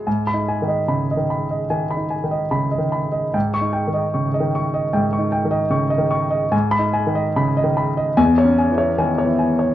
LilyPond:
<<
  \new Staff \with { instrumentName = "Grand piano" } { \time 4/4 \key gis \minor \tempo 4 = 74 << { r16 b''8 r2. r16 | r16 cis'''8 r2. r16 | r16 b''8 r4 r16 gis''8 r4. | } \\ { gis''8 gis''16 dis''16 b''16 dis''16 b''16 dis''16 gis''16 b''16 gis''16 dis''16 b''16 dis''16 b''16 dis''16 | g''8 g''16 dis''16 cis'''16 dis''16 cis'''16 dis''16 g''16 cis'''16 g''16 dis''16 cis'''16 dis''16 cis'''16 dis''16 | gis''8 gis''16 dis''16 b''16 dis''16 b''16 dis''16 r16 cis''16 gis''16 cis''16 gis''16 cis''16 gis''16 cis''16 | } >> }
  \new Staff \with { instrumentName = "Grand piano" } { \clef bass \time 4/4 \key gis \minor \tuplet 3/2 { gis,8 dis'8 dis8 cis8 dis4 dis8 dis'8 dis8 cis8 dis4 } | \tuplet 3/2 { gis,8 dis'8 dis8 cis8 dis4 gis,8 dis'8 dis8 cis8 dis4 } | \tuplet 3/2 { gis,8 dis'8 dis8 cis8 dis4 e,8 cis'8 e8 dis8 e4 } | }
>>